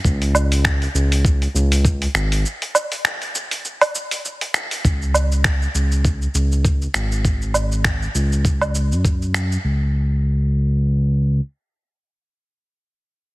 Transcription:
0.04 analog synth bass C#2, kick, shaker
0.22 open hi-hat, shaker
0.35 low woodblock, shaker
0.52 open hi-hat, shaker
0.65 finger snap, kick, shaker
0.82 open hi-hat, shaker
0.95 analog synth bass C#2, shaker
1.12 open hi-hat, shaker
1.25 kick, shaker
1.42 open hi-hat, shaker
1.55 analog synth bass C#2, shaker
1.72 open hi-hat, shaker
1.85 kick, shaker
2.02 open hi-hat, shaker
2.15 analog synth bass G#1, finger snap, shaker
2.32 open hi-hat, shaker
2.46 shaker
2.62 open hi-hat, shaker
2.75 low woodblock, shaker
2.92 open hi-hat, shaker
3.05 finger snap, shaker
3.22 open hi-hat, shaker
3.35 shaker
3.51 open hi-hat, shaker
3.65 shaker
3.81 open hi-hat, low woodblock, shaker
3.95 shaker
4.11 open hi-hat, shaker
4.25 shaker
4.41 open hi-hat, shaker
4.54 finger snap, shaker
4.71 open hi-hat, shaker
4.85 analog synth bass C#2, kick, shaker
5.02 shaker
5.14 low woodblock, shaker
5.32 shaker
5.44 finger snap, kick, shaker
5.62 shaker
5.75 analog synth bass C#2, shaker
5.92 shaker
6.05 kick, shaker
6.22 shaker
6.35 analog synth bass C#2, shaker
6.52 shaker
6.65 kick, shaker
6.82 shaker
6.94 analog synth bass G#1, finger snap, shaker
7.12 shaker
7.25 kick, shaker
7.42 shaker
7.54 low woodblock, shaker
7.72 shaker
7.84 finger snap, kick, shaker
8.02 shaker
8.15 analog synth bass C#2, shaker
8.32 shaker
8.45 kick, shaker
8.61 low woodblock, shaker
8.75 shaker
8.92 analog synth bass F#2, shaker
9.05 kick, shaker
9.22 shaker
9.34 finger snap, shaker
9.52 shaker
9.64 analog synth bass C#2

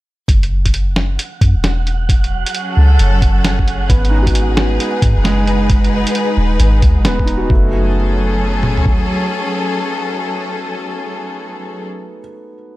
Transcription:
0.28 808-style bass F#1, synth texture F#5, kick, closed hi-hat
0.43 closed hi-hat
0.66 kick, closed hi-hat
0.74 closed hi-hat
0.96 snare
1.19 closed hi-hat
1.41 808-style bass F#2, kick, closed hi-hat
1.56 808-style bass E1
1.64 snare, closed hi-hat
1.87 closed hi-hat
2.09 string section F#3, kick, closed hi-hat
2.24 closed hi-hat
2.46 string section G#4, closed hi-hat
2.54 string section C#4, closed hi-hat
2.73 string section A4
2.77 808-style bass C#2
2.99 808-style bass F#1, closed hi-hat
3.22 kick, closed hi-hat
3.45 snare, closed hi-hat
3.59 kick
3.68 closed hi-hat
3.89 808-style bass G#1, string section G#3, felt piano B3, kick, closed hi-hat
4.05 closed hi-hat
4.09 felt piano D#4
4.22 felt piano F#4
4.27 string section D#4 B4, kick, closed hi-hat
4.35 closed hi-hat
4.57 snare
4.80 closed hi-hat
5.02 808-style bass G#2, kick, closed hi-hat
5.17 808-style bass F#1
5.24 felt piano G#3, snare, closed hi-hat
5.47 closed hi-hat
5.70 kick, closed hi-hat
5.84 closed hi-hat
6.07 closed hi-hat
6.15 closed hi-hat
6.37 808-style bass D#1
6.60 808-style bass G#1, closed hi-hat
6.82 808-style bass D#2, kick, closed hi-hat
6.97 808-style bass G#1
7.04 808-style bass D#1, felt piano B3, snare, closed hi-hat
7.20 kick
7.24 felt piano D#4, closed hi-hat
7.37 felt piano F#4
7.50 808-style bass F#1, string section F#3, felt piano A3, kick
7.58 string section C#4
7.66 string section G#4
7.70 string section A4
8.63 mid tom
8.77 floor tom
8.86 kick

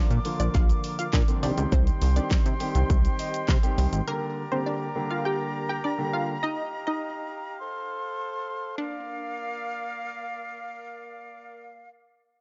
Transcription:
Already playing: grand piano D3 F3 A#3 F4, woodwind section A#4 D5 F5 D6
0.10 analog synth bass A#2, closed hi-hat, shaker
0.25 grand piano D3 F3 A#3 F4, open hi-hat, shaker
0.40 analog synth bass A#1, synth pluck D4 D5, closed hi-hat, shaker
0.55 analog synth bass A#1, synth pluck F4 F5, kick, clap, shaker
0.69 closed hi-hat, shaker
0.84 open hi-hat, shaker
0.99 synth pluck F4 F5, closed hi-hat, shaker
1.13 analog synth bass A#2, synth pluck D4 D5, kick, snare, clap, shaker
1.28 grand piano D3 F3 A#3 C4, closed hi-hat, shaker
1.43 analog synth bass C2, grand piano D#3 G3 C4 G4, synth pluck D4 D5, woodwind section G4 C5 G5 C6, open hi-hat, shaker
1.58 analog synth bass C#2, closed hi-hat, shaker
1.72 analog synth bass C2, synth pluck C4 C5, kick, shaker
1.87 closed hi-hat, shaker
2.02 analog synth bass C2, open hi-hat, shaker
2.16 grand piano D#3 G3 C4 G4, synth pluck D4 D5, closed hi-hat, shaker
2.31 analog synth bass C3, kick, snare, clap, shaker
2.46 analog synth bass C3, closed hi-hat, shaker
2.60 grand piano D#3 G3 C4 G4, open hi-hat, shaker
2.75 analog synth bass C2, closed hi-hat, shaker
2.90 analog synth bass C2, kick, shaker
3.05 closed hi-hat, shaker
3.19 grand piano D#5, open hi-hat, shaker
3.34 closed hi-hat, shaker
3.48 analog synth bass C3, grand piano C6, kick, snare, clap, shaker
3.63 grand piano D#3 G3 C4 G4, closed hi-hat, shaker
3.78 analog synth bass C2, open hi-hat, shaker
3.93 analog synth bass G#1, closed hi-hat, shaker
4.07 grand piano D3 G3 A#3 G4, synth pluck A#3 A#4, woodwind section G4 A#4 D5 A#5
4.51 grand piano D3 G3 A#3 G4, synth pluck C4 C5
4.66 synth pluck D4 D5
4.95 grand piano D3 G3 A#3 G4
5.11 synth pluck F4 F5
5.25 synth pluck G4 G5
5.69 synth pluck G4 G5
5.84 synth pluck D4 D5
5.98 grand piano D3 G3 A#3 G4
6.13 synth pluck F4 F5
6.43 synth pluck D#4 D#5, woodwind section D#5 F5
6.87 synth pluck D#4 D#5
7.60 woodwind section A4 C5 C6
8.78 woodwind section A#3 A#4 D5 F5, synth pluck D4

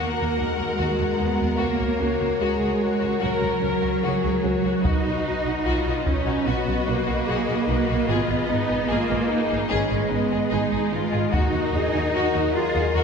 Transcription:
Already playing: cello section A#3, violin section F#4 A#4 F#5, french horn section F#4 A#4, viola section A#4
0.18 double bass section D#2, violin section F#4
0.38 double bass section D#2, cello section G#3, violin section D#4
0.56 double bass section D#2, violin section F#4
0.78 double bass section D#2, violin section F#4, viola section F#4
0.98 double bass section D#2, violin section F#4
1.17 double bass section D#2, viola section B3, violin section D#4
1.36 violin section F#4
1.40 double bass section D#2
1.57 double bass section C#2, cello section A#3, violin section F#4, viola section A#4
1.62 violin section C#5
1.77 double bass section C#2, violin section F#4
1.99 double bass section C#2, violin section C#4, viola section F#4
2.20 double bass section C#2, violin section F#4
2.40 double bass section C#2, cello section G#3, violin section F#4, viola section G#4
2.61 double bass section C#2, violin section F#4
2.82 viola section F#4
3.00 double bass section C#2, violin section F#4
3.20 double bass section C#2, cello section F#3, violin section F#4, viola section A#4
3.42 double bass section C#2, violin section F#4
3.61 double bass section C#2, violin section C#4, viola section A#4
3.81 double bass section C#2, violin section F#4
4.03 double bass section C#2, violin section F#4, viola section G#4
4.23 double bass section C#2, violin section F#4
4.43 double bass section C#2, violin section C#4, viola section F#4
4.64 double bass section C#2, violin section F#4
4.84 double bass section B1, french horn section F#3 D#5, cello section D#4, violin section F#4 B4 D#5, taiko
5.03 double bass section B1, violin section F#4
5.25 double bass section B1, violin section D#4
5.45 double bass section B1, violin section F#4
5.65 double bass section B1, viola section F4, violin section F#4
5.86 double bass section B1, violin section F#4
6.05 cello section C#4, viola section D#4, taiko
6.26 double bass section B1, violin section F#4
6.46 double bass section B1, cello section B3, viola section F#4, violin section F#4
6.67 double bass section B1, violin section F#4
6.87 double bass section B1, cello section A#3, violin section D#4
7.07 double bass section B1, violin section F#4
7.27 double bass section B1, violin section F#4, viola section G#4
7.47 double bass section B1, violin section F#4
7.68 double bass section B1, violin section D#4, viola section F#4
7.88 double bass section B1, violin section F#4
8.08 double bass section G#1, cello section B3, viola section F4, french horn section G#4, violin section G#4
8.28 double bass section G#1, violin section G#4
8.49 double bass section G#1, violin section D#4, viola section D#4
8.68 double bass section G#1, violin section G#4
8.87 double bass section G#1, cello section A#3, viola section F4, violin section G#4
9.07 double bass section G#1, violin section G#4
9.29 viola section D#4
9.48 double bass section G#1, violin section G#4
9.70 double bass section G#1, cello section G#3, viola section C#4, violin section G#4
9.90 double bass section G#1, violin section G#4
10.09 double bass section G#1, viola section B3, violin section D#4
10.31 double bass section G#1, violin section G#4
10.50 double bass section G#1, viola section D#4, violin section G#4
10.72 double bass section G#1, violin section G#4
10.92 double bass section G#1, violin section D#4, viola section F4
11.12 double bass section G#1, violin section G#4
11.31 double bass section D#2, french horn section F#3 A#4, cello section D#4, violin section F#4 A#4 D#5, viola section F#4, taiko
11.52 double bass section D#2, violin section F#4
11.73 double bass section D#2, violin section D#4, viola section G#4
11.94 double bass section D#2, violin section F#4
12.14 double bass section D#2, violin section F#4, viola section F#4
12.34 double bass section D#2, violin section F#4
12.54 cello section F4, viola section G#4
12.74 double bass section D#2, violin section F#4
12.94 double bass section D#2, violin section F#4, cello section F#4, viola section A#4

